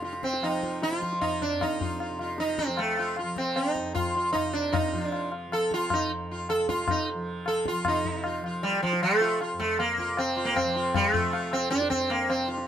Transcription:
Already playing: tanpura F2 C3 F3
0.02 sitar F4, tabla te
0.13 tabla te
0.23 sitar C4, tabla ke
0.33 tabla te
0.40 tanpura F3, sitar D#4, tabla na
0.63 sitar F4, tabla ke
0.82 sitar F4, tabla te
0.93 tabla te
0.99 tanpura F3, sitar F4, tabla ke
1.13 tabla te
1.21 sitar D#4, tabla na, tabla ge
1.41 sitar D4, tabla ge
1.53 tanpura F2
1.61 sitar D#4, tabla na, tabla ge
1.81 sitar F4, tabla ge
2.00 sitar F4, tabla na
2.10 tanpura C3
2.19 sitar F4, tabla na
2.38 sitar D#4, tabla te
2.49 tabla te
2.58 sitar C4, tabla ke
2.66 tanpura F3, tabla te
2.77 sitar A3, tabla na
2.97 sitar F4, tabla na
3.16 sitar F4, tabla na
3.23 tanpura F3
3.36 sitar C4, tabla ke
3.56 sitar D#4, tabla na
3.75 tanpura F2, tabla ke
3.95 sitar F4, tabla na, tabla ge
4.15 sitar F4, tabla te
4.33 tanpura C3, sitar D#4, tabla na, tabla ge
4.53 sitar D4, tabla te
4.72 sitar D#4, tabla na, tabla ge
4.92 tanpura F3, sitar F4, tabla ge
5.04 sitar D4
5.12 sitar F4, tabla na
5.32 tabla na
5.48 tanpura F3
5.52 sitar A4, tabla na
5.71 sitar F4, tabla ke
5.90 sitar D#4, tabla na, tabla ge
6.04 tanpura F2
6.31 sitar F4
6.49 sitar A4, tabla na
6.59 tanpura C3
6.69 sitar F4, tabla ke
6.88 sitar D#4, tabla na, tabla ge
7.14 tanpura F3
7.46 sitar A4, tabla na
7.66 sitar F4, tabla ke
7.71 tanpura F3
7.85 tanpura C3, sitar D#4 F4, tabla na, tabla ge
8.05 tabla ge
8.24 sitar F4, tabla na
8.42 tanpura F3, tabla na
8.46 sitar F4
8.63 sitar G3, tabla te
8.73 tabla te
8.83 sitar F3, tabla ke
8.93 tanpura F3, tabla te
9.03 sitar A3, tabla na
9.21 sitar F4, tabla na
9.41 sitar F4, tabla na
9.53 tanpura F2
9.59 sitar A3, tabla ke
9.79 sitar A#3, tabla na
9.98 sitar F4, tabla ke
10.08 tanpura C3
10.17 sitar C4, tabla na
10.37 sitar F4, tabla te
10.45 sitar A#3
10.56 sitar C4, tabla na, tabla ge
10.64 tanpura F3
10.75 sitar F4, tabla te
10.94 sitar A3, tabla na, tabla ge
11.13 sitar F4, tabla ge
11.18 tanpura F3
11.33 sitar F4, tabla na
11.53 sitar C4, tabla na
11.70 tanpura F2, sitar D4, tabla te
11.82 tabla te
11.90 sitar C4, tabla ke
12.01 tabla te
12.10 sitar A#3, tabla na
12.30 tanpura C3, sitar C4, tabla na
12.48 sitar F4, tabla te
12.58 tabla te

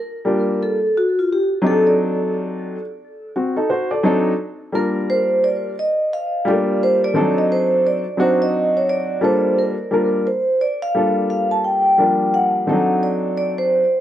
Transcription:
Already playing: vibraphone A#4
0.25 upright piano G3 A#3 D4 F4 G4
0.63 vibraphone A4
0.97 vibraphone F#4
1.19 vibraphone F4
1.33 vibraphone G4
1.62 upright piano F#3 C4 D4 D#4 G4
1.67 vibraphone A4, upright piano A4
1.87 vibraphone D5
3.36 upright piano C4 F#4
3.56 upright piano D#4 A4
3.70 upright piano F#4 C5
3.91 upright piano A4 D5
4.03 upright piano F#3 C4 D4 D#4 A4
4.72 upright piano G3 A#3 D4 F4 A#4, vibraphone A#4
5.10 vibraphone C5
5.44 vibraphone D5
5.79 vibraphone D#5
6.13 vibraphone F5
6.45 upright piano G3 A3 D4 F4 G4, vibraphone D5
6.52 upright piano A#3
6.83 vibraphone C5
7.04 vibraphone D5
7.14 upright piano D#3 C4 D4 D#4 A4
7.21 upright piano F#3
7.38 vibraphone D#5
7.52 vibraphone C5
7.87 vibraphone D5
8.17 upright piano F#3 C4 D4 D#4 F#4, vibraphone C5
8.42 vibraphone D#5
8.77 vibraphone C#5
8.89 vibraphone D5
9.21 upright piano G3 A#3 D4 F4 A4, vibraphone C5
9.59 vibraphone A#4
9.91 upright piano G3 A#3 D4 F4 A#4
10.27 vibraphone C5
10.61 vibraphone D5
10.82 vibraphone F5
10.95 upright piano G3 A#3 D4 F4 A4
11.30 vibraphone F5
11.51 vibraphone A5
11.64 vibraphone G5
11.98 upright piano F3 G3 A#3 D4 A#4
12.34 vibraphone F#5
12.67 upright piano D#3 C4 D4 D#4 A4
12.73 upright piano F#3
13.03 vibraphone D5
13.37 vibraphone D5
13.58 vibraphone C5

